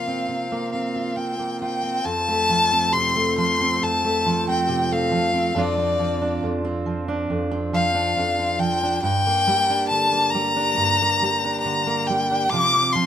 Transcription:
Already playing: steel-string acoustic guitar C3 F3 A#3 F4, violin F5
0.08 steel-string acoustic guitar C4
0.28 steel-string acoustic guitar C3
0.52 steel-string acoustic guitar A#3
0.72 steel-string acoustic guitar C4, violin F5
0.96 steel-string acoustic guitar F4
1.16 steel-string acoustic guitar C4, violin G5
1.39 steel-string acoustic guitar A#3
1.61 steel-string acoustic guitar F4, violin G5
1.83 steel-string acoustic guitar C4
2.05 steel-string acoustic guitar F2, violin A5
2.28 steel-string acoustic guitar A3
2.49 steel-string acoustic guitar F3
2.72 steel-string acoustic guitar C4
2.93 steel-string acoustic guitar C3, violin C6
3.16 steel-string acoustic guitar A3
3.38 steel-string acoustic guitar F3, violin C6
3.61 steel-string acoustic guitar C4
3.82 steel-string acoustic guitar F2, violin A5
4.05 steel-string acoustic guitar A3
4.26 steel-string acoustic guitar F3
4.48 steel-string acoustic guitar C4, violin G5
4.69 steel-string acoustic guitar C3
4.91 steel-string acoustic guitar A3, violin F5
5.11 steel-string acoustic guitar F3
5.34 steel-string acoustic guitar C4
5.55 steel-string acoustic guitar F2 F3 C4 D4 F4, violin D5
5.78 steel-string acoustic guitar C4
5.99 steel-string acoustic guitar F3
6.21 steel-string acoustic guitar D4
6.43 steel-string acoustic guitar F2
6.65 steel-string acoustic guitar C4
6.86 steel-string acoustic guitar F3
7.08 steel-string acoustic guitar D4
7.30 steel-string acoustic guitar F2
7.51 steel-string acoustic guitar C4
7.73 steel-string acoustic guitar F3, violin F5
7.94 steel-string acoustic guitar D4
8.17 steel-string acoustic guitar F2
8.39 steel-string acoustic guitar C4
8.59 steel-string acoustic guitar F3, violin G5
8.83 steel-string acoustic guitar D4
9.03 steel-string acoustic guitar G2, violin G5
9.27 steel-string acoustic guitar A#3
9.47 steel-string acoustic guitar G3
9.70 steel-string acoustic guitar D4
9.89 steel-string acoustic guitar D3, violin A5
10.12 steel-string acoustic guitar A#3
10.31 steel-string acoustic guitar G3, violin A#5
10.56 steel-string acoustic guitar D4
10.77 steel-string acoustic guitar G2
11.01 steel-string acoustic guitar A#3
11.22 steel-string acoustic guitar G3
11.45 steel-string acoustic guitar D4
11.61 violin A#5
11.65 steel-string acoustic guitar D3
11.87 steel-string acoustic guitar A#3
12.07 steel-string acoustic guitar G3, violin G5
12.31 steel-string acoustic guitar D4
12.49 steel-string acoustic guitar C3 F3, violin D6
12.54 steel-string acoustic guitar C4 F4
12.76 steel-string acoustic guitar C4
12.92 steel-string acoustic guitar F3, violin C6

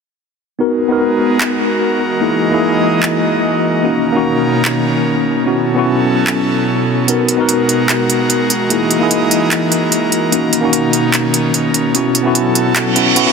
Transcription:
0.59 analog synth pad G#3 B3 F#4 A#4, tine electric piano B3 D#4 F#4 A#4
0.88 tine electric piano B3 D#4 F#4 A#4
1.41 clap
2.01 analog synth pad E3 G#3 D#5
2.21 tine electric piano A#3 D#4 E4 G#4
2.50 tine electric piano A#3 D#4 E4 G#4
3.03 clap
3.83 analog synth pad B2 D#3 C#4 A#4, tine electric piano A#3 C#4 D#4 F#4
4.12 tine electric piano A#3 C#4 D#4 F#4
4.65 clap
5.45 analog synth pad B2 F#3 C#4 A4, tine electric piano B3 C#4 E4 F#4
5.75 tine electric piano B3 C#4 E4 F#4
6.27 clap
7.07 analog synth pad G#3 F#4 A#4, tine electric piano B3 D#4 F#4 A#4, closed hi-hat
7.29 closed hi-hat
7.37 tine electric piano B3 D#4 F#4 A#4
7.49 closed hi-hat
7.69 closed hi-hat
7.89 clap, closed hi-hat
8.10 closed hi-hat
8.30 closed hi-hat
8.50 analog synth pad E3 D#5, closed hi-hat
8.70 tine electric piano A#3 D#4 E4 G#4, closed hi-hat
8.91 closed hi-hat
8.99 tine electric piano A#3 D#4 E4
9.03 tine electric piano G#4
9.11 closed hi-hat
9.31 closed hi-hat
9.51 clap, closed hi-hat
9.72 closed hi-hat
9.92 closed hi-hat
10.12 closed hi-hat
10.31 analog synth pad B2 D#3 C#4, tine electric piano A#3 C#4 D#4 F#4, closed hi-hat
10.53 closed hi-hat
10.61 tine electric piano A#3 C#4 D#4
10.65 tine electric piano F#4
10.73 closed hi-hat
10.93 closed hi-hat
11.14 clap, closed hi-hat
11.34 closed hi-hat
11.54 closed hi-hat
11.74 closed hi-hat
11.94 analog synth pad F#3 A4, tine electric piano B3 C#4 E4 F#4, closed hi-hat
12.15 closed hi-hat
12.23 tine electric piano B3 C#4 E4 F#4
12.35 closed hi-hat
12.55 closed hi-hat
12.76 clap, closed hi-hat, reverse cymbal
12.95 tine electric piano B3 C#4 E4 F#4, closed hi-hat
13.15 tine electric piano B3 C#4 E4 F#4, closed hi-hat
13.25 tine electric piano B3 C#4 E4 F#4

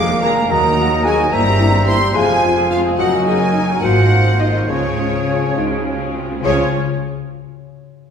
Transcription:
Already playing: double bass section F1, cello section F2, harp F3 D4 A#4, bassoon G#3, clarinet A#4, marimba D5, oboe F5, violin section D6, flute section D6
0.09 viola section A#3 A#4
0.22 viola section G#3 G#4, french horn section A#3 G#4, harp D4 G#4, marimba A#4, flute section A#5, violin section A#5
0.37 viola section A#3 A#4
0.49 cello section D#2, double bass section D#2, harp D#3, bassoon F#3, viola section F#3 F#4, marimba A#4, oboe D#5, flute section A#5, violin section A#5
0.64 viola section A#3 D#4
0.76 viola section F#3 F#4, french horn section A#3 F#4, harp D#4
0.93 viola section A#3 D#4
1.03 viola section F#3 F#4, french horn section A#3 F#4, harp D#4 F#4, marimba G#4, flute section G#5, violin section G#5
1.20 viola section A#3 D#4
1.32 double bass section G1, harp G2, cello section G2, bassoon G3, viola section A#3 E4, marimba A#4, clarinet C5, oboe E5, flute section A#5, violin section A#5
1.47 viola section C4 G4
1.59 viola section A#3 E4, french horn section C4 E4, harp C4
1.73 viola section C4 G4
1.87 viola section A#3 E4, french horn section C4 E4, harp E4 G4, marimba C5, flute section C6, violin section C6
2.01 viola section C4 G4
2.14 double bass section F1, cello section F2, harp F2, bassoon F3, viola section G#3 F4, marimba G#4, oboe F5, flute section G#5, violin section G#5
2.29 viola section C4 G#4
2.43 viola section G#3 F4, french horn section C4 F4, harp C4
2.57 viola section C4 G#4
2.70 viola section G#3 F4, french horn section C4 F4, marimba F4, harp F4 G#4, flute section F5, violin section F5
2.85 viola section C4 G#4
2.98 double bass section F#1, harp F#2, cello section F#2, bassoon F#3, viola section F#3 D#4, marimba F#4, clarinet A#4, oboe D#5, flute section F#5, violin section F#5
3.12 viola section A#3 F#4
3.25 viola section F#3 D#4, french horn section A#3 D#4, harp A#3, marimba G#4, flute section G#5, violin section G#5
3.41 viola section A#3 F#4
3.53 viola section F#3 D#4, french horn section A#3 D#4, harp D#4 A#4
3.69 viola section A#3 F#4
3.82 double bass section G#1, cello section G#2, harp G#2, bassoon F3, viola section A#3 F4, marimba F#4, clarinet A#4, oboe C5, flute section F#5, violin section F#5
3.97 viola section C4 F#4
4.10 viola section A#3 F4, french horn section C4 F4, harp C4
4.27 viola section C4 F#4
4.38 viola section A#3 F4, french horn section C4 F4, marimba D#4, harp F4 A#4, violin section D#5, flute section D#5
4.55 viola section C4 F#4
4.68 double bass section C#2, cello section C#3, harp C#3, bassoon F3, viola section G#3 F4, marimba C#4, clarinet G#4, violin section C#5, flute section C#5, oboe C#5
4.84 viola section C#4 G#4
4.97 viola section G#3 F4, french horn section C#4 F4, harp F4
5.13 viola section C#4 G#4
5.26 viola section G#3 F4, french horn section C#4 F4, harp G#4
5.42 viola section C#4 G#4
5.55 double bass section C#2, cello section C#3, viola section G#3 F4, french horn section D#4, harp F#4
5.71 viola section C#4 G#4
5.85 viola section G#3 F4, french horn section C#4, harp G#4
6.01 viola section C#4 G#4
6.14 viola section G#3 F4, french horn section C4, harp F4
6.32 viola section C#4 G#4
6.40 harp C#3 C#4, french horn section C#4 F4
6.44 double bass section C#2, cello section C#3, bassoon F3, viola section C#4 F4, harp F4 G#4, clarinet G#4, flute section C#5, violin section C#5, marimba C#5, oboe C#5
6.50 harp F5

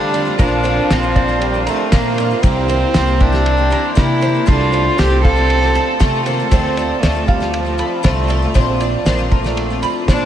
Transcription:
Already playing: twelve-string acoustic guitar D3 F3 A3 C4 F4, upright bass D3, french horn G3, steel-string acoustic guitar C4, cello D4, brass ensemble D4 A4 C5 F5, nylon-string guitar C5 F5 B5
0.13 twelve-string acoustic guitar F3 A3 C4 F4, nylon-string guitar D5, ride
0.25 twelve-string acoustic guitar A3 C4 F4
0.38 upright bass A#1, twelve-string acoustic guitar A#2 F3 C4 D4 F4, french horn F3, cello D4, nylon-string guitar A#4, brass ensemble A#4 C5, kick, ride
0.63 twelve-string acoustic guitar F3 C4 D4 F4, nylon-string guitar C5, ride
0.90 upright bass A#1, twelve-string acoustic guitar A#2 F3 C4 D4 F4, cello C4, nylon-string guitar A#4, snare, ride
1.03 twelve-string acoustic guitar C4 D4 F4
1.16 nylon-string guitar D5, kick, ride
1.28 twelve-string acoustic guitar C4 D4 F4
1.40 french horn G3, ride
1.54 twelve-string acoustic guitar C4 D4 F4
1.67 twelve-string acoustic guitar F3 C4 D4 F4, french horn A3, nylon-string guitar A#5, ride
1.91 twelve-string acoustic guitar A#2 F3 C4 D4 F4, upright bass A#2, french horn A#3, nylon-string guitar A#4, kick, snare, ride
2.18 twelve-string acoustic guitar F3 C4 D4 F4, nylon-string guitar C5, ride
2.31 twelve-string acoustic guitar C4 D4 F4
2.43 upright bass C2, twelve-string acoustic guitar C3 E3 A#3 C4 G4, french horn C4, brass ensemble E4 C5 G5, nylon-string guitar A#4, kick, ride
2.68 twelve-string acoustic guitar E3 A#3 C4 G4, nylon-string guitar C5, ride
2.94 upright bass C2, twelve-string acoustic guitar C3 E3 A#3 C4 G4, cello C4, nylon-string guitar A#4, snare, ride
3.07 twelve-string acoustic guitar A#3 C4 G4
3.21 cello D4, nylon-string guitar E5, kick, ride
3.32 twelve-string acoustic guitar A#3 C4 G4, snare
3.46 ride
3.57 twelve-string acoustic guitar A#3 C4 G4
3.70 twelve-string acoustic guitar E3 A#3 C4 G4, nylon-string guitar A#5, ride
3.95 twelve-string acoustic guitar C3 E3 A#3 C4 G4, upright bass C3, cello E4, nylon-string guitar A#4, kick, snare, ride
4.21 twelve-string acoustic guitar E3 A#3 C4 G4, nylon-string guitar C5, ride
4.35 twelve-string acoustic guitar A#3 C4 G4
4.46 upright bass C2, twelve-string acoustic guitar C3 F3 A3 C4 F4, french horn D4, cello F4, brass ensemble F4 A4 A5, nylon-string guitar A4, kick, ride
4.72 twelve-string acoustic guitar F3 A3 C4 F4, nylon-string guitar C5, ride
4.98 upright bass C2, twelve-string acoustic guitar C3 F3 A3 C4 F4, french horn C4, cello G4, nylon-string guitar A4, snare, ride
5.10 twelve-string acoustic guitar A3 C4 F4
5.24 cello A4, nylon-string guitar F5, kick, ride
5.36 twelve-string acoustic guitar A3 C4 F4
5.50 ride
5.62 twelve-string acoustic guitar A3 C4 F4
5.75 twelve-string acoustic guitar F3 A3 C4 F4, nylon-string guitar A5, ride
6.00 twelve-string acoustic guitar C3 F3 A3 C4 F4, upright bass C3, french horn A3, nylon-string guitar A4, kick, snare, ride
6.25 twelve-string acoustic guitar F3 A3 C4 F4, french horn A#3, nylon-string guitar C5, ride
6.40 twelve-string acoustic guitar A3 C4 F4
6.51 upright bass D2, twelve-string acoustic guitar D3 F3 A3 C4 F4, french horn C4, nylon-string guitar C5, brass ensemble C5 D5, kick, ride
6.77 twelve-string acoustic guitar F3 A3 C4 F4, nylon-string guitar D5, ride
7.01 upright bass D2, twelve-string acoustic guitar D3 F3 A3 C4 F4, french horn A3, nylon-string guitar C5, snare, ride
7.15 twelve-string acoustic guitar A3 C4 F4
7.27 french horn G3, nylon-string guitar F5, kick, ride
7.40 twelve-string acoustic guitar A3 C4 F4, snare
7.53 french horn F3, ride
7.65 twelve-string acoustic guitar A3 C4 F4
7.78 twelve-string acoustic guitar F3 A3 C4 F4, nylon-string guitar B5, ride
8.03 upright bass C2, twelve-string acoustic guitar D3 F3 A3 C4 F4, french horn A3, nylon-string guitar C5, kick, snare, ride
8.28 twelve-string acoustic guitar F3 A3 C4 F4, nylon-string guitar D5, ride
8.42 twelve-string acoustic guitar A3 C4 F4
8.54 upright bass A#1, twelve-string acoustic guitar A#2 F3 C4 D4 F4, french horn C4, nylon-string guitar C5, brass ensemble D5, kick, ride
8.80 twelve-string acoustic guitar F3 C4 D4 F4, nylon-string guitar D5, ride
9.05 upright bass A#1, twelve-string acoustic guitar A#2 F3 C4 D4 F4, french horn A#3, nylon-string guitar C5, snare, ride
9.18 twelve-string acoustic guitar C4 D4 F4
9.31 french horn A3, nylon-string guitar A#5, kick, ride
9.44 twelve-string acoustic guitar C4 D4 F4, snare
9.57 ride
9.70 twelve-string acoustic guitar C4 D4 F4
9.82 twelve-string acoustic guitar F3 C4 D4 F4, nylon-string guitar B5, ride
10.08 upright bass A#2, twelve-string acoustic guitar A#2 F3 C4 D4 F4, cello D4, nylon-string guitar C5, kick, snare, ride

